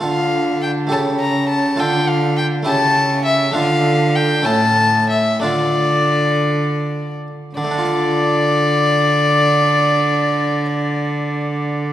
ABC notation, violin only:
X:1
M:6/8
L:1/8
Q:3/8=60
K:Dm
V:1 name="Violin"
f2 g a b a | g f g a2 e | f2 g a2 e | d4- d z |
d6- | d6 |]